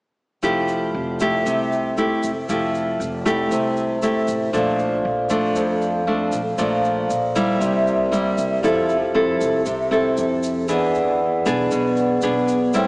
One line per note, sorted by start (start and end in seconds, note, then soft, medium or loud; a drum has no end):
0.43 0.91 F1 medium
0.43 1.43 F3 soft
0.43 0.94 A3 soft
0.43 0.94 E4 soft
0.43 0.94 G4 soft
0.43 shaker medium
0.68 shaker soft
0.95 1.42 F1 medium
1.20 1.93 A3 soft
1.20 1.93 E4 medium
1.20 1.93 G4 medium
1.20 shaker soft
1.46 2.19 C2 medium
1.46 2.46 C3 soft
1.46 shaker soft
1.72 shaker soft
1.97 2.30 A3 soft
1.97 2.30 E4 soft
1.97 2.30 G4 medium
1.97 shaker soft
2.23 2.47 F1 medium
2.23 shaker soft
2.49 2.96 F1 medium
2.49 3.48 F3 soft
2.49 2.99 A3 soft
2.49 2.99 E4 soft
2.49 3.00 G4 soft
2.49 shaker medium
2.74 shaker soft
3.00 3.47 F1 medium
3.00 shaker soft
3.25 3.98 A3 medium
3.25 3.98 E4 medium
3.25 3.98 G4 medium
3.25 shaker medium
3.51 4.24 C2 medium
3.51 4.51 C3 medium
3.51 shaker medium
3.77 shaker soft
4.02 4.49 A3 soft
4.02 4.49 E4 soft
4.02 4.50 G4 soft
4.02 shaker soft
4.27 4.51 A1 medium
4.27 shaker medium
4.50 5.01 A#1 medium
4.50 5.53 A#2 soft
4.50 5.04 F3 soft
4.50 5.04 A3 soft
4.50 5.04 D4 soft
4.50 6.52 A4 soft
4.50 6.54 C5 soft
4.50 6.54 D5 soft
4.50 shaker medium
4.56 6.56 F5 medium
4.79 shaker soft
5.05 5.52 A#1 medium
5.30 6.03 F3 medium
5.30 6.03 A3 medium
5.30 6.03 D4 medium
5.30 shaker medium
5.56 6.28 F2 medium
5.56 6.56 F2 soft
5.56 shaker soft
5.82 shaker soft
6.07 6.40 F3 soft
6.07 6.40 A3 soft
6.07 6.40 D4 medium
6.32 6.56 A#1 medium
6.32 shaker medium
6.57 7.06 A#1 medium
6.57 7.58 A#2 soft
6.57 7.09 F3 soft
6.57 7.09 A3 soft
6.57 7.10 D4 medium
6.57 6.81 A4 medium
6.57 6.82 C5 soft
6.57 6.83 D5 soft
6.57 6.84 F5 medium
6.57 shaker medium
6.82 7.60 A4 soft
6.82 7.60 C5 soft
6.82 7.60 D5 soft
6.82 7.61 F5 soft
6.82 shaker soft
7.10 7.58 A#1 medium
7.10 shaker soft
7.35 8.08 G3 medium
7.35 8.08 A#3 medium
7.35 8.08 E4 medium
7.35 shaker medium
7.58 8.34 C2 medium
7.58 8.60 C3 medium
7.58 8.59 G4 soft
7.58 8.61 A#4 soft
7.58 8.62 D5 soft
7.58 shaker soft
7.64 8.63 E5 medium
7.87 shaker soft
8.12 8.59 G3 soft
8.12 8.59 A#3 soft
8.12 8.59 E4 medium
8.12 shaker soft
8.38 8.62 C2 medium
8.38 shaker medium
8.61 9.37 F2 medium
8.61 9.63 F3 soft
8.61 8.96 C4 soft
8.61 8.96 E4 medium
8.61 10.63 G4 medium
8.61 10.64 A4 soft
8.61 8.97 A4 soft
8.61 10.65 C5 soft
8.61 shaker medium
8.66 10.66 E5 medium
8.89 shaker soft
9.14 9.65 C4 medium
9.14 9.66 E4 soft
9.14 9.66 A4 medium
9.41 9.64 C2 medium
9.41 shaker soft
9.66 10.14 C2 medium
9.66 10.66 C3 medium
9.66 shaker medium
9.91 10.64 C4 medium
9.91 10.64 E4 soft
9.91 10.64 A4 medium
9.91 shaker soft
10.17 10.69 F2 medium
10.17 shaker soft
10.43 shaker medium
10.65 11.68 E3 soft
10.65 11.19 B3 soft
10.65 11.20 D4 medium
10.65 11.92 G#4 medium
10.65 11.93 B4 soft
10.65 shaker medium
10.69 11.42 E2 loud
10.69 11.20 G#4 medium
10.69 11.95 D5 soft
10.69 11.96 F#5 medium
10.95 shaker soft
11.45 11.69 B1 medium
11.45 12.18 B3 medium
11.45 12.18 D4 medium
11.45 12.19 G#4 medium
11.45 shaker medium
11.71 12.19 B1 medium
11.71 12.71 B2 medium
11.71 shaker medium
11.96 12.73 G#4 soft
11.96 12.74 B4 soft
11.96 12.74 D5 soft
11.96 12.75 F#5 soft
11.96 shaker soft
12.21 12.75 B1 medium
12.21 12.57 B3 medium
12.21 12.57 D4 medium
12.21 12.57 G#4 medium
12.21 shaker soft
12.48 shaker medium
12.71 12.87 A1 medium
12.71 12.87 A2 soft
12.71 12.87 G3 soft
12.71 12.87 C4 medium
12.71 12.87 E4 medium
12.71 12.87 A4 medium
12.71 12.87 C5 soft
12.71 12.87 E5 soft
12.71 shaker medium
12.77 12.87 G5 medium